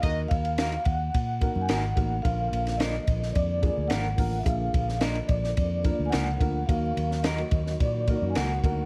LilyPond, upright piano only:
\new Staff \with { instrumentName = "Upright piano" } { \time 4/4 \key ees \minor \tempo 4 = 108 <bes ees' ges' bes'>4 r4. <bes ees' ges' bes'>8 r8 <bes ees' ges' bes'>8 | <bes d' f' bes'>4 r4. <bes d' f' aes'>8 r8 <bes d' f' bes'>8 | <bes d' f' aes'>4 r4. <bes d' f' bes'>8 r8 <bes d' f' bes'>8 | <bes ees' ges' bes'>4 r4. <bes ees' ges' bes'>8 r8 <bes ees' ges' bes'>8 | }